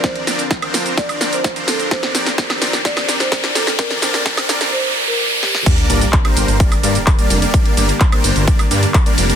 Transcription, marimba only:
\new Staff \with { instrumentName = "Marimba" } { \time 4/4 \key g \minor \tempo 4 = 128 c''2 d''8. c''8. a'8 | c''2 d''8. c''8. a'8 | bes'2 c''8. bes'8. g'8 | r1 |
r1 | }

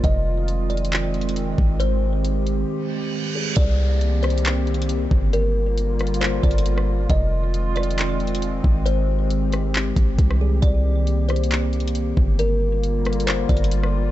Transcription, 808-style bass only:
\new Staff \with { instrumentName = "808-style bass" } { \clef bass \time 4/4 \key c \minor \tempo 4 = 136 f,,2.~ f,,8 aes,,8~ | aes,,2 r2 | c,2.~ c,8 g,,8~ | g,,2~ g,,8 g,,4. |
f,,2.~ f,,8 aes,,8~ | aes,,2~ aes,,8 aes,,8 c,4 | c,2.~ c,8 g,,8~ | g,,2~ g,,8 g,,4. | }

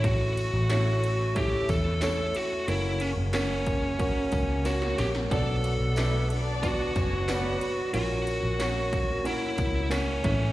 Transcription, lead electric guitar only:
\new Staff \with { instrumentName = "Lead electric guitar" } { \time 4/4 \key fis \phrygian \tempo 4 = 91 fis'2 g'8 a'8 a'8 fis'8 | e'8 cis'8 cis'2 fis'8 g'8 | a'4. r8 fis'2 | fis'2 e'4 cis'8 cis'8 | }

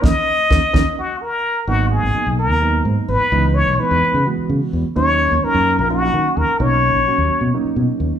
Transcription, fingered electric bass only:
\new Staff \with { instrumentName = "Fingered electric bass" } { \clef bass \time 7/8 \key ees \minor \tempo 4 = 128 ees,16 r8. ees,16 r16 ees,16 r4. r16 | \key gis \minor gis,,8. gis,,16 r16 b,,8 dis,8. gis,16 r16 gis,,16 r16 | cis,8. b,,16 r16 e,16 r16 cis16 r8 cis16 r16 e,16 r16 | dis,8. dis,16 r16 fis,8 ais,,8. dis16 r16 dis,16 r16 |
b,,8. ais,,16 r16 dis,16 r16 b,16 r8 b,16 r16 dis,16 r16 | }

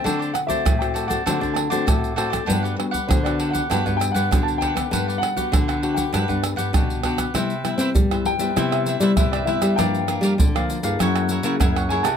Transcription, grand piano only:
\new Staff \with { instrumentName = "Grand piano" } { \time 4/4 \key g \major \tempo 4 = 99 g''8 fis''16 e''8 g''8 fis''8. a''16 fis''8. r8 | r4 c''16 d''8 fis''8. g''16 fis''8 a''16 g''8~ | g''8 fis''4~ fis''16 g''4.~ g''16 r8 | \key g \mixolydian r4. g''8. e''8 d''16 e''16 d''16 e''8 |
g''4 r2 fis''8 gis''16 a''16 | }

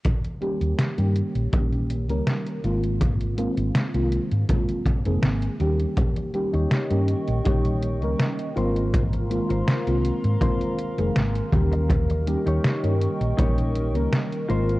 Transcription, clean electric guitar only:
\new Staff \with { instrumentName = "Clean electric guitar" } { \time 4/4 \key ees \mixolydian \tempo 4 = 81 r1 | r1 | r8. <ees' g' des''>8. r8 <ees' g' des''>8. r8. <f' bes' c''>8 | r8. <f' bes' c''>8. r8 <f' bes' c''>8. r4 r16 |
r8. <ees' g' des''>8. r8 <ees' g' des''>8. r8. <f' bes' c''>8 | }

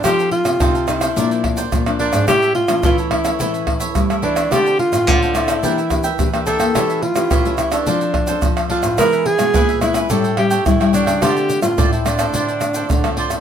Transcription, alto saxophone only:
\new Staff \with { instrumentName = "Alto saxophone" } { \time 4/4 \key d \minor \tempo 4 = 107 g'8 f'4 e'4. r8 d'8 | g'8 f'8 f'8 e'4. r8 d'8 | g'8 f'4 e'4. r8 a'8~ | a'8 f'4 e'16 d'4. r16 f'8 |
bes'8 gis'4 e'8 a'8 g'8 e'8 d'8 | g'8. f'8 e'16 d'2 r8 | }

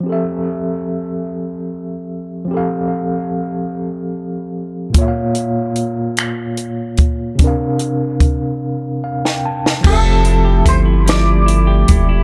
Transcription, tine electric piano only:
\new Staff \with { instrumentName = "Tine electric piano" } { \time 6/8 \key f \major \tempo 4. = 49 << { r2. | r2. | r2. | r2 f''16 g''16 a''8 |
r2. | } \\ { <f c' g' a' e''>2. | <f c' g' a' f''>2. | <bes, bes f' des'' e'' f''>2. | <c c' d' bes' f''>2. |
<f c' g' a' e''>2. | } >> }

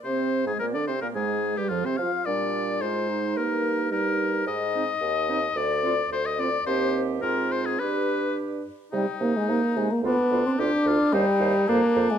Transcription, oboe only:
\new Staff \with { instrumentName = "Oboe" } { \time 2/4 \key ees \major \tempo 4 = 109 c''8. aes'16 bes'16 d''16 c''16 bes'16 | aes'8. g'16 f'16 c''16 f''8 | d''4 c''4 | bes'4 bes'4 |
\key c \minor ees''2 | d''4 c''16 ees''16 d''8 | c''8. r16 bes'8 c''16 aes'16 | b'4 r4 |
ees'2 | d'4 g'8 f'8 | ees'4 d'4 | }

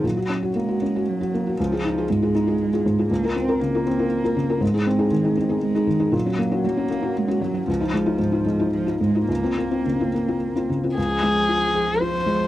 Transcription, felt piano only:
\new Staff \with { instrumentName = "Felt piano" } { \time 3/4 \key des \major \tempo 4 = 117 bes,16 ges'16 des'16 ges'16 bes16 ges'16 des'16 ges'8 ges'16 bes16 ges'16 | des,16 <f' aes'>16 ees'16 <f' aes'>16 aes,16 <f' aes'>16 ees'16 <f' aes'>8 <f' aes'>16 aes,16 <f' aes'>16 | des,16 <f' bes'>16 c'16 <f' bes'>16 des16 <f' bes'>16 c'16 <f' bes'>8 <f' bes'>16 des16 <f' bes'>16 | aes,16 <ees' aes'>16 c'16 <ees' aes'>16 ees16 <ees' aes'>16 c'16 <ees' aes'>8 <ees' aes'>16 ees16 <ees' aes'>16 |
bes,16 <des' ges'>16 bes16 <des' ges'>16 ges16 <des' ges'>16 bes16 <des' ges'>8 <des' ges'>16 ges16 <des' ges'>16 | des,16 <ees' f'>16 aes16 <ees' f'>16 aes,16 <ees' f'>16 aes16 <ees' f'>8 <ees' f'>16 aes,16 <ees' f'>16 | des,16 <c' f'>16 bes16 <c' f'>16 des16 <c' f'>16 bes16 <c' f'>8 <c' f'>16 des16 <c' f'>16 | des,8 aes8 f'8 aes'8 f'8 aes8 | }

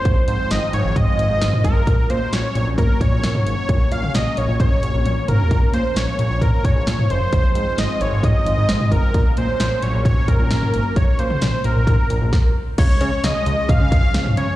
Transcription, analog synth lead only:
\new Staff \with { instrumentName = "Analog synth lead" } { \time 4/4 \key ges \lydian \tempo 4 = 132 c''8 c''8 ees''8 des''8 ees''4. bes'8~ | bes'8 c''8 des''8 des''8 bes'8 des''4 des''8~ | des''8 f''8 ees''8 des''8 des''4. bes'8~ | bes'8 c''8 des''8 des''8 bes'8 des''4 c''8~ |
c''8 c''8 ees''8 des''8 ees''4. bes'8~ | bes'8 c''4 des''8 des''8 bes'4. | des''8 c''4 bes'2 r8 | des''4 ees''4 f''4. des''8 | }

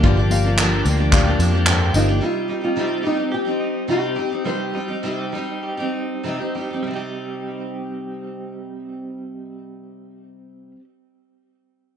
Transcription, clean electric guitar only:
\new Staff \with { instrumentName = "Clean electric guitar" } { \time 4/4 \key c \minor \tempo 4 = 100 <f bes d' g'>8 bes8 d'8 bes8 g'8 d'8 g'8 c'16 d'16 | g8 ees'8 c'8 ees'8 g'8 ees'8 c'8 g'8 | g8 ees'8 c'8 ees'8 g'8 ees'8 c'8 g'8 | <g c' ees' g'>1~ |
<g c' ees' g'>1 | }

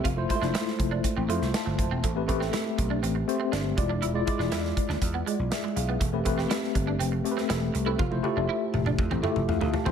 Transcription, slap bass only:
\new Staff \with { instrumentName = "Slap bass" } { \clef bass \time 4/4 \key a \minor \tempo 4 = 121 f,,8 r16 f,,16 r8 f,,8 r16 a,,16 f,16 c,16 r16 g,,16 f,,16 e,,16 | a,,8 a,,8 r8 b,,8 a,,8 r8 g,,8 e,,8 | e,,8 r16 e,,16 e,8 r16 d,16 e,8 r16 b,,16 r8 b,,8 | e,,8 e,,8 r8 g,,8 f,,8 r8 e,,8 c,8 |
f,,8 r16 f,,16 r8 f,,8 f,16 a,,16 r16 f,,16 f,16 d,16 r16 a,,16 | }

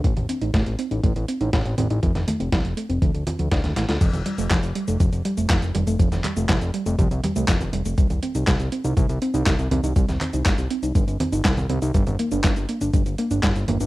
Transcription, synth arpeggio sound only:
\new Staff \with { instrumentName = "Synth arpeggio sound" } { \time 4/4 \key f \mixolydian \tempo 4 = 121 a16 r16 c'16 ees'16 a16 r16 c'16 ees'16 a16 r16 c'16 ees'16 a16 r16 c'16 ees'16 | f16 r16 a16 c'16 f16 r16 a16 c'16 f16 r16 f'16 f16 d''16 r16 a16 f'16 | f16 r16 g16 a16 f16 r16 g16 a16 f16 r16 g16 a16 f16 r16 g16 a16 | f16 r16 g16 a16 f16 r16 g16 a16 f16 r16 g16 a16 f16 r16 g16 a16 |
g16 r16 c'16 ees'16 g16 r16 c'16 ees'16 g16 r16 c'16 ees'16 g16 r16 c'16 ees'16 | g16 r16 c'16 ees'16 g16 r16 c'16 ees'16 g16 r16 c'16 ees'16 g16 r16 c'16 ees'16 | g16 r16 bes16 d'16 g16 r16 bes16 d'16 g16 r16 bes16 d'16 g16 r16 bes16 d'16 | }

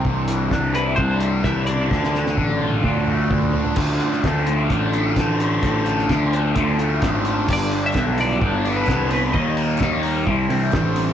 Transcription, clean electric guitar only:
\new Staff \with { instrumentName = "Clean electric guitar" } { \time 4/4 \key d \dorian \tempo 4 = 129 r4. b'8 c''4 e''8 d''8~ | d''2. r4 | r1 | r1 |
\key g \major d''8. e''8. d''8 d''8. b'8. b'8 | ees''4. r2 r8 | }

